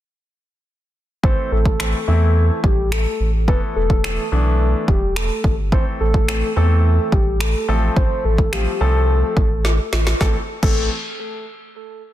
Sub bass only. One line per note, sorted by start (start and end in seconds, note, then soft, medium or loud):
1.24 1.34 A1 loud
1.52 1.94 A1 loud
2.08 2.50 E2 medium
2.64 3.06 A1 loud
3.20 3.49 A1 medium
3.48 3.59 E1 loud
3.76 4.19 E1 loud
4.32 4.75 B1 medium
4.88 5.31 E1 loud
5.44 5.74 G1 medium
5.72 5.83 A1 loud
6.00 6.43 A1 loud
6.56 6.99 E2 medium
7.12 7.55 A1 loud
7.68 7.90 A1 medium
7.96 8.07 A1 loud
8.24 8.67 A1 loud
8.81 9.23 C2 medium
9.37 9.79 A1 loud
9.93 10.14 A1 medium
10.21 10.36 A1 loud
10.63 10.89 A1 loud